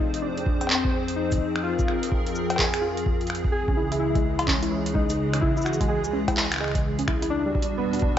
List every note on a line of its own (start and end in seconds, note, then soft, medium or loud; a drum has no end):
0.00 3.50 F2 medium
0.00 3.50 F3 medium
0.00 3.50 C4 medium
0.00 0.23 D#4 loud
0.00 7.27 G#4 medium
0.00 1.63 C5 medium
0.14 closed hi-hat medium
0.22 0.66 D4 loud
0.38 closed hi-hat soft
0.46 kick loud
0.61 closed hi-hat medium
0.61 cowbell soft
0.67 1.18 C4 loud
0.67 clap loud
0.67 cowbell medium
0.75 cowbell medium
0.85 kick loud
1.08 closed hi-hat medium
1.16 1.65 D#4 loud
1.32 kick loud
1.32 kick medium
1.32 closed hi-hat medium
1.32 shaker medium
1.38 kick medium
1.56 finger snap soft
1.63 2.54 F4 loud
1.63 3.52 A#4 medium
1.79 kick loud
1.79 shaker medium
1.88 finger snap soft
2.03 closed hi-hat medium
2.12 kick loud
2.27 closed hi-hat soft
2.35 shaker medium
2.50 closed hi-hat medium
2.50 cowbell medium
2.56 2.83 G#4 loud
2.56 kick loud
2.56 clap loud
2.56 cowbell medium
2.64 cowbell medium
2.74 finger snap medium
2.74 closed hi-hat medium
2.81 3.26 F4 loud
2.97 closed hi-hat medium
3.06 kick loud
3.21 closed hi-hat soft
3.27 finger snap medium
3.27 closed hi-hat soft
3.35 closed hi-hat soft
3.44 kick loud
3.52 7.28 C#2 medium
3.52 7.28 C#3 medium
3.52 7.28 E3 medium
3.52 7.28 G#3 medium
3.52 4.01 G#4 loud
3.68 3.75 C#4 medium
3.68 kick loud
3.77 3.90 E4 medium
3.92 3.98 E4 medium
3.92 closed hi-hat medium
3.99 4.44 E4 loud
4.15 4.22 G#3 loud
4.15 kick loud
4.15 closed hi-hat soft
4.24 4.38 G#3 medium
4.39 closed hi-hat medium
4.39 cowbell medium
4.46 4.96 C#4 medium
4.46 4.59 C#4 medium
4.46 kick loud
4.46 clap loud
4.63 4.70 E4 medium
4.63 closed hi-hat medium
4.72 4.82 E4 medium
4.86 closed hi-hat medium
4.94 5.06 G#3 loud
4.94 5.38 D#4 loud
4.94 kick loud
5.10 5.18 G#3 medium
5.10 closed hi-hat medium
5.10 shaker medium
5.33 5.40 C#4 medium
5.33 finger snap soft
5.33 closed hi-hat medium
5.41 5.66 E4 loud
5.41 5.56 E4 medium
5.41 kick loud
5.57 5.64 E4 medium
5.57 shaker soft
5.62 5.90 F#4 medium
5.62 shaker soft
5.66 finger snap soft
5.66 shaker medium
5.73 shaker medium
5.81 5.87 G#3 loud
5.81 kick loud
5.81 closed hi-hat medium
5.88 6.04 G#3 medium
5.88 6.80 G#4 medium
6.04 closed hi-hat soft
6.04 shaker medium
6.13 6.24 C#4 medium
6.28 6.36 E4 medium
6.28 kick loud
6.28 closed hi-hat medium
6.28 cowbell medium
6.37 6.48 E4 medium
6.37 clap loud
6.52 finger snap medium
6.52 closed hi-hat medium
6.54 finger snap medium
6.56 finger snap medium
6.58 6.71 G#3 loud
6.58 finger snap soft
6.61 finger snap soft
6.64 finger snap soft
6.68 finger snap soft
6.71 6.84 G#3 medium
6.71 finger snap soft
6.71 kick loud
6.71 closed hi-hat medium
6.99 7.05 C#4 medium
6.99 closed hi-hat medium
7.08 7.21 E4 medium
7.08 finger snap medium
7.08 kick loud
7.22 7.29 E4 medium
7.22 closed hi-hat medium
7.30 8.19 E2 medium
7.30 8.19 B2 medium
7.30 8.19 G3 medium
7.30 7.79 D4 loud
7.30 8.19 D4 medium
7.30 8.19 F#4 medium
7.46 7.53 G3 loud
7.55 7.69 G3 medium
7.55 kick loud
7.62 closed hi-hat medium
7.77 8.19 B3 loud
7.77 7.89 B3 medium
7.93 8.01 D4 medium
7.93 closed hi-hat soft
7.99 8.13 D4 medium
7.99 kick loud
7.99 closed hi-hat soft